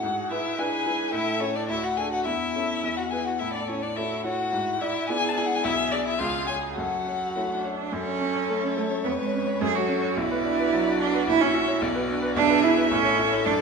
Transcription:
Already playing: violin F#4 F#5
0.02 grand piano G#2, cello G#4
0.31 violin E4 E5, grand piano E4 B4
0.58 grand piano D4 E4 B4, violin G#4 G#5, cello B4
0.86 grand piano E4 B4
1.13 grand piano A2, violin E4 E5, cello A4
1.40 violin C#4 C#5, grand piano E4 A4
1.55 violin D4 D5
1.69 grand piano D2, violin E4 E5, cello F#4
1.84 violin F#4 F#5
1.97 grand piano D4 A4, violin G#4 G#5
2.12 violin F#4 F#5
2.26 grand piano E2, violin E4 E5, cello E4
2.56 grand piano C#4 A4
2.83 grand piano E2
2.97 violin F#4 F#5
3.11 grand piano E4 B4, violin G#4 G#5
3.25 violin F#4 F#5
3.39 grand piano A2, violin E4 E5, cello A4
3.53 violin D4 D5
3.68 violin C#4 C#5, grand piano E4 C#5
3.82 violin D4 D5
3.96 grand piano A3 E4 C#5, violin E4 E5, cello F#4
4.25 grand piano E4 C#5, violin F#4 F#5
4.53 grand piano G#2, cello E4
4.81 violin E4 E5, grand piano E4 D5
5.09 grand piano B3 E4 D5, violin G#4 G#5
5.29 violin A5
5.37 grand piano E4 D5, violin G#5
5.46 violin F#5
5.55 violin G#5
5.63 grand piano B1, violin E4 E5, cello G#4
5.91 violin D4 D5, grand piano G#4 D5
6.05 violin E4 E5
6.19 grand piano C#2, violin F4 F5, cello G#4
6.47 violin G#4 G#5, grand piano G#4 C#5
6.76 grand piano F#2, violin F#4 F#5, cello A4
7.07 grand piano F#4 C#5
7.35 grand piano A3 F#4 C#5, cello E4
7.50 cello D4
7.64 grand piano F#4 C#5
7.92 grand piano F#2, cello C#4, violin A4 C#5
8.07 grand piano C#5
8.21 grand piano C#4
8.35 grand piano C#5
8.49 grand piano A3
8.63 grand piano C#4
8.77 cello A3, grand piano A4
8.91 grand piano C#5
9.04 grand piano F2, cello B3, violin B4
9.19 cello G#3, grand piano C#5
9.33 grand piano C#4
9.47 grand piano C#5
9.60 grand piano F#2, cello G#4, violin A4
9.75 cello F#4, grand piano C#5
9.89 grand piano C#4
10.03 grand piano C#5
10.16 grand piano B1, cello E4, violin F#4 D5
10.31 grand piano B4
10.45 grand piano D4
10.59 grand piano B4
10.73 grand piano F#3
10.86 grand piano D4
11.00 cello D4, grand piano F#4
11.14 grand piano B4
11.27 grand piano A#1, cello E4, violin E5
11.41 cello C#4, grand piano C#5
11.54 grand piano E4
11.68 grand piano C#5
11.82 grand piano B1, violin D5
11.95 grand piano B4
12.09 grand piano D4
12.22 grand piano B4
12.36 grand piano B1, cello D4, violin G#4 E5
12.49 grand piano B4
12.63 grand piano E4, cello E4
12.77 grand piano B4
12.91 grand piano A1, cello C#4, violin A4
13.05 grand piano C#5
13.19 grand piano E4
13.32 grand piano C#5
13.45 grand piano F#2, cello D4, violin D5

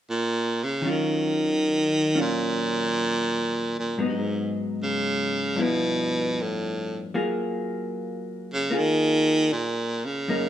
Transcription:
0.10 baritone saxophone A#2
0.64 baritone saxophone C#3
0.82 hollow-body jazz guitar D#3 F#3 C#4
0.86 hollow-body jazz guitar F4
0.91 baritone saxophone D#3
2.15 hollow-body jazz guitar F#3 C#4 F4
2.21 baritone saxophone A#2
3.79 baritone saxophone A#2
3.98 hollow-body jazz guitar G#2 F#3 B3
4.03 hollow-body jazz guitar D#4
4.08 baritone saxophone G#2
4.83 baritone saxophone C#3
5.56 hollow-body jazz guitar G2 F3 B3 E4
5.62 baritone saxophone B2
6.42 baritone saxophone A2
7.14 hollow-body jazz guitar F#3 A#3 F4 G#4
8.54 baritone saxophone C#3
8.71 hollow-body jazz guitar A#3 F4 G#4
8.78 baritone saxophone D#3
9.52 baritone saxophone A#2
10.05 baritone saxophone C#3
10.28 hollow-body jazz guitar F#2 A#3 D#4

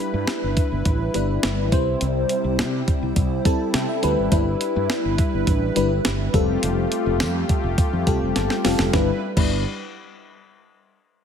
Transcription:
Already playing: fm electric piano G3 D4 E4 B4, analog synth pad G3 E4 B4
0.14 fretless electric bass G2
0.27 snare, closed hi-hat
0.43 fretless electric bass G1
0.57 kick, closed hi-hat
0.72 fretless electric bass G1
0.85 fretless electric bass A1, kick, closed hi-hat
1.14 fretless electric bass G1, fm electric piano G3 D4 E4 B4, closed hi-hat
1.43 fretless electric bass G1, snare, closed hi-hat
1.72 fretless electric bass C2, analog synth pad C3 E4, fm electric piano G3 C4 E4 C5, kick, closed hi-hat
2.01 fretless electric bass C2, closed hi-hat
2.29 closed hi-hat
2.44 fretless electric bass C2
2.59 fretless electric bass C3, snare, closed hi-hat
2.88 kick, closed hi-hat
3.02 fretless electric bass C2
3.16 fretless electric bass C2, kick, closed hi-hat
3.45 fm electric piano G3 C4 E4 A4 A5, kick, closed hi-hat
3.74 fretless electric bass C3, fm electric piano G5, snare, closed hi-hat
3.89 fm electric piano E5
4.02 fretless electric bass D2, fm electric piano G3 C4 E4 B4, closed hi-hat
4.18 fretless electric bass G#1
4.31 fretless electric bass G1, fm electric piano G3 D4 E4 B4, analog synth pad B4, kick, closed hi-hat
4.61 closed hi-hat
4.76 fretless electric bass G2
4.90 snare, closed hi-hat
5.05 fretless electric bass G1
5.18 kick, closed hi-hat
5.34 fretless electric bass G1
5.47 fretless electric bass A1, kick, closed hi-hat
5.76 fretless electric bass G1, fm electric piano G3 D4 E4 B4, closed hi-hat
6.05 fretless electric bass G1, snare, closed hi-hat
6.33 fretless electric bass F1, fm electric piano G3 C4 F4 A4, analog synth pad A3 F4 G4, kick, closed hi-hat
6.63 fretless electric bass F1, closed hi-hat
6.92 closed hi-hat
7.06 fretless electric bass F1
7.20 fretless electric bass F2, snare, closed hi-hat, tambourine
7.49 kick, closed hi-hat
7.64 fretless electric bass F1
7.78 kick, closed hi-hat
7.93 fretless electric bass F2
8.07 fretless electric bass C2, fm electric piano G3 C4 F4 A4 G5, kick, closed hi-hat
8.21 fretless electric bass F1
8.36 fretless electric bass G1, fm electric piano A5, snare, closed hi-hat
8.50 fm electric piano G5, snare
8.64 fretless electric bass F1, fm electric piano G3 C4 F4 A4 F5, snare, open hi-hat
8.79 fretless electric bass F1, snare
8.93 fretless electric bass G1, analog synth pad G3 E4 B4, fm electric piano G3 D4 E4 B4, kick, snare
9.37 fretless electric bass G1, fm electric piano G3 D4 E4 B4, kick, crash

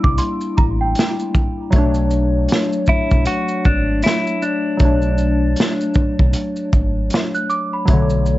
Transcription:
Already playing: synth keys G3 A#3 D4 E4
0.03 fingered electric bass C2, celesta D6, kick
0.18 celesta C6, closed hi-hat, shaker
0.41 shaker
0.57 fingered electric bass A1, celesta A#5, kick, shaker
0.81 celesta G5
0.95 snare, closed hi-hat, shaker
1.19 shaker
1.34 kick, shaker
1.70 fingered electric bass B1, synth keys F#3 A3, kick, closed hi-hat, shaker
1.76 synth keys D4 C#5
1.94 shaker
2.11 shaker
2.49 snare, closed hi-hat, shaker
2.73 shaker
2.86 clean electric guitar E4, kick, shaker
3.11 fingered electric bass B1, kick, shaker
3.26 clean electric guitar F#4, closed hi-hat, shaker
3.48 shaker
3.65 fingered electric bass G#1, clean electric guitar D4, kick, shaker
4.02 clean electric guitar E4, snare, closed hi-hat, shaker
4.27 shaker
4.42 clean electric guitar D4, shaker
4.77 fingered electric bass B1, synth keys F#3 A3, kick, closed hi-hat, shaker
4.83 synth keys D4 C#5
5.02 shaker
5.18 shaker
5.56 snare, closed hi-hat, shaker
5.81 shaker
5.94 kick, shaker
6.19 fingered electric bass B1, kick
6.33 closed hi-hat, shaker
6.56 shaker
6.73 fingered electric bass G#1, kick, shaker
7.10 snare, closed hi-hat, shaker
7.35 celesta F#6, shaker
7.50 celesta D6, shaker
7.73 celesta B5
7.85 fingered electric bass B1, synth keys F#3 A3, kick, closed hi-hat, shaker
7.90 synth keys D3 C#5
8.10 shaker
8.26 shaker

